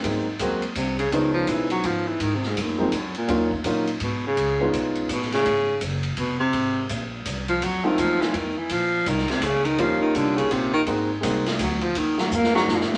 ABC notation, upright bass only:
X:1
M:3/4
L:1/8
Q:"Swing" 1/4=166
K:Abmix
V:1 name="Upright bass" clef=bass
A,,2 E,,2 C,,2 | D,,2 _C,,2 A,,,2 | A,,2 G,,2 F,,2 | E,,2 B,,2 A,,2 |
D,,2 _C,,2 =A,,,2 | A,,,2 G,,,2 F,,,2 | A,,,2 B,,,2 C,,2 | F,, z E,,2 F,,2 |
B,,,2 C,, z D,,2 | E,,2 C,,2 B,,,2 | A,,,2 C,,2 =D,,2 | E,,2 F,,2 G,, z |]